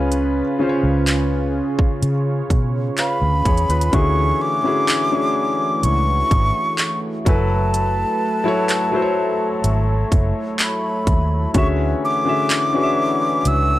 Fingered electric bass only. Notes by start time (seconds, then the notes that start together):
Already playing: C#2
0.83 C#2
2.02 C#3
2.50 B2
3.22 D2
3.46 E2
3.69 D#2
3.93 D2
5.84 C#2
6.31 G#1
7.26 F#1
9.64 G#1
10.12 F#1
11.07 D#2
11.55 D2
13.46 C#2